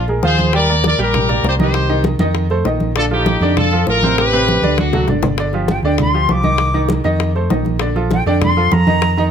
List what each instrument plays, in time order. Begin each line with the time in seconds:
Already playing: fingered electric bass A#1
0.08 grand piano G#3 G#4 A#4, high bongo, high conga
0.23 fingered electric bass D#2, grand piano F3 F4 F5, horn section G#4 C5, high bongo, low bongo, high conga
0.39 high bongo, high conga
0.53 grand piano G3 G4 G5, horn section A#4 D5, high bongo, high conga
0.69 grand piano A#3 A#4 D5, high conga
0.84 horn section A#4 D5, high bongo, high conga
0.98 fingered electric bass A#1, grand piano G3 G4 G5, high bongo, high conga
1.02 horn section G4 A#4
1.14 high bongo, high conga, low conga
1.29 grand piano A#3 A#4 D5, high bongo, high conga, low conga
1.43 fingered electric bass C2, grand piano A#3 A#4 D5, high bongo, low bongo, high conga
1.48 horn section G4 C5
1.59 grand piano D#3 D#4 D#5, horn section G4 C5, high bongo, high conga
1.74 high bongo, high conga
1.89 grand piano D#3 D#4 D#5, high conga
2.04 high bongo, high conga
2.19 fingered electric bass F2, grand piano D#3 D#4 D#5, high bongo, high conga
2.35 high bongo, high conga
2.50 grand piano A3 A4 C5, high bongo, high conga
2.64 fingered electric bass A#1, grand piano D#3 D#4 D#5, high bongo, low bongo, high conga
2.80 high bongo, high conga
2.96 grand piano D3 D4 D5, horn section F4 A4, high bongo, high conga
3.11 grand piano F3 F4 A4, horn section D#4 G4, high conga
3.26 high bongo, high conga
3.40 fingered electric bass F2, grand piano D3 D4 D5, high bongo, high conga
3.57 horn section F4 A4, high bongo, high conga, low conga
3.71 grand piano F3 F4 A4, high bongo, high conga
3.87 fingered electric bass A1, grand piano F3 F4 A4, horn section F4 A#4, high bongo, low bongo, high conga
4.02 grand piano C3 C4 C5, high bongo, high conga
4.18 horn section G4 B4, high bongo, high conga
4.33 grand piano C3 C4 B4, high conga
4.48 high bongo, high conga
4.62 fingered electric bass D2, grand piano D3 D4 D5, high bongo, high conga
4.78 horn section D4 F#4, high bongo, high conga
4.93 grand piano F#3 F#4 A4, high bongo, low conga
5.08 fingered electric bass G1, grand piano D3 D4 D5, high bongo, low conga
5.23 low bongo, low conga
5.38 grand piano D3 D4 D5, high bongo, high conga
5.53 grand piano F3 F4 G4, high bongo, high conga
5.68 flute G5, high bongo, high conga
5.83 fingered electric bass D2, grand piano D3 D4 D5, flute G5, high bongo
5.98 flute C6, high bongo, high conga, low conga
6.14 grand piano F3 F4 G4, high conga
6.28 fingered electric bass C2, grand piano F3 F4 G4, flute D6, high bongo, low bongo, high conga
6.43 grand piano D#3 D#4 D#5, high bongo, high conga
6.58 high bongo, high conga
6.73 grand piano D#3 D#4 D#5, high bongo, high conga
6.89 high bongo, high conga
7.04 fingered electric bass F2, grand piano D#3 D#4 D#5, high bongo
7.20 high bongo, high conga
7.35 grand piano A3 A4 C5, high conga
7.50 fingered electric bass A#1, grand piano D#3 D#4 D#5, high bongo, low bongo, high conga
7.65 high bongo, high conga
7.79 grand piano D3 D4 D5, high bongo, high conga
7.96 grand piano F3 F4 A4, high bongo, high conga
8.11 flute G5, high bongo, high conga
8.26 fingered electric bass F2, grand piano D3 D4 D5, flute G5, high bongo
8.42 flute C6, high bongo, high conga, low conga
8.57 grand piano F3 F4 A4, high conga
8.72 fingered electric bass F2, grand piano F3 F4 A4, flute A#5, high bongo, low bongo, high conga
8.87 grand piano D#3 D#4 D#5, high bongo, high conga
9.02 high bongo, high conga
9.17 grand piano D#3 D#4 D#5, high bongo, high conga